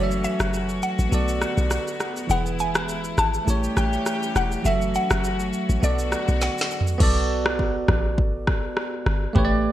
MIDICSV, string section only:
0, 0, Header, 1, 2, 480
1, 0, Start_track
1, 0, Key_signature, 2, "minor"
1, 0, Tempo, 588235
1, 1874, Time_signature, 4, 2, 24, 8
1, 7932, End_track
2, 0, Start_track
2, 0, Title_t, "String section"
2, 0, Program_c, 0, 48
2, 0, Note_on_c, 0, 52, 77
2, 0, Note_on_c, 0, 54, 69
2, 0, Note_on_c, 0, 57, 73
2, 0, Note_on_c, 0, 61, 70
2, 0, Note_on_c, 0, 66, 82
2, 894, Note_off_c, 0, 52, 0
2, 894, Note_off_c, 0, 61, 0
2, 915, Note_on_c, 0, 50, 78
2, 915, Note_on_c, 0, 59, 72
2, 1845, Note_off_c, 0, 57, 0
2, 1856, Note_off_c, 0, 54, 0
2, 1856, Note_off_c, 0, 66, 0
2, 1865, Note_off_c, 0, 50, 0
2, 1871, Note_on_c, 0, 56, 73
2, 1871, Note_on_c, 0, 64, 80
2, 2816, Note_off_c, 0, 59, 0
2, 2823, Note_off_c, 0, 56, 0
2, 2823, Note_off_c, 0, 64, 0
2, 2833, Note_on_c, 0, 55, 69
2, 2833, Note_on_c, 0, 57, 72
2, 2833, Note_on_c, 0, 61, 70
2, 2834, Note_on_c, 0, 52, 78
2, 2834, Note_on_c, 0, 67, 85
2, 3784, Note_off_c, 0, 55, 0
2, 3784, Note_off_c, 0, 57, 0
2, 3784, Note_off_c, 0, 61, 0
2, 3785, Note_off_c, 0, 67, 0
2, 3793, Note_on_c, 0, 54, 69
2, 3794, Note_on_c, 0, 57, 69
2, 3794, Note_on_c, 0, 66, 79
2, 3795, Note_on_c, 0, 61, 69
2, 4735, Note_off_c, 0, 52, 0
2, 4744, Note_off_c, 0, 66, 0
2, 4745, Note_off_c, 0, 61, 0
2, 4754, Note_on_c, 0, 50, 78
2, 4755, Note_on_c, 0, 66, 86
2, 4756, Note_on_c, 0, 59, 68
2, 5695, Note_off_c, 0, 54, 0
2, 5695, Note_off_c, 0, 57, 0
2, 5704, Note_off_c, 0, 50, 0
2, 5705, Note_off_c, 0, 66, 0
2, 5706, Note_off_c, 0, 59, 0
2, 7932, End_track
0, 0, End_of_file